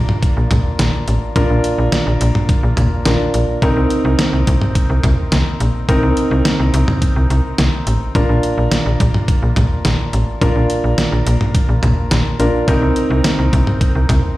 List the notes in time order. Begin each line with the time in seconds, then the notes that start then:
Already playing: D4 F4 A#4
0.09 mid tom
0.23 kick, closed hi-hat
0.37 A#1
0.51 A#1, kick, closed hi-hat, mid tom
0.79 A#1, snare, closed hi-hat
1.08 A1, closed hi-hat
1.36 A#1 D4 F4 A#4, kick, closed hi-hat
1.50 A#1
1.64 closed hi-hat
1.78 A#1
1.92 snare, closed hi-hat
2.07 A#1
2.21 A#1, closed hi-hat
2.35 mid tom
2.49 kick, closed hi-hat
2.63 A#1
2.77 A#1, closed hi-hat, mid tom
3.05 A#1 D4 F4 A#4, snare, closed hi-hat
3.34 A#1, closed hi-hat
3.62 C2 C4 D#4 A#4, kick, closed hi-hat
3.76 C2
3.90 closed hi-hat
4.05 C2
4.19 snare, closed hi-hat
4.33 C2
4.47 C2, kick, closed hi-hat
4.61 mid tom
4.75 kick, closed hi-hat
4.90 C2
5.03 C2, kick, closed hi-hat, mid tom
5.32 C2, snare, closed hi-hat
5.60 A#1, closed hi-hat
5.89 C2 C4 D#4 A#4, kick, closed hi-hat
6.03 C2
6.17 closed hi-hat
6.31 C2
6.45 snare, closed hi-hat
6.59 C2
6.74 C2, closed hi-hat
6.88 mid tom
7.02 kick, closed hi-hat
7.16 C2
7.30 C2, closed hi-hat
7.58 C2, snare, closed hi-hat
7.87 A1, closed hi-hat
8.15 A#1 D4 F4 A#4, kick, closed hi-hat
8.29 A#1
8.43 closed hi-hat
8.58 A#1
8.72 snare, closed hi-hat
8.86 A#1
9.00 A#1, kick, closed hi-hat
9.14 mid tom
9.28 kick, closed hi-hat
9.42 A#1
9.56 A#1, kick, closed hi-hat, mid tom
9.85 A#1, snare, closed hi-hat
10.13 A1, closed hi-hat
10.41 A#1 D4 F4 A#4, kick, closed hi-hat
10.56 A#1
10.70 closed hi-hat
10.84 A#1
10.98 snare, closed hi-hat
11.12 A#1
11.26 A#1, closed hi-hat
11.41 mid tom
11.55 kick, closed hi-hat
11.69 A#1
11.83 A#1, closed hi-hat, mid tom
12.11 A#1, snare, closed hi-hat
12.40 A#1 D4 F4 A#4, closed hi-hat
12.68 C2 C4 D#4 A#4, kick, closed hi-hat
12.82 C2
12.96 closed hi-hat
13.10 C2
13.24 snare, closed hi-hat
13.39 C2
13.53 C2, kick, closed hi-hat
13.67 mid tom
13.81 kick, closed hi-hat
13.95 C2
14.09 C2, kick, closed hi-hat, mid tom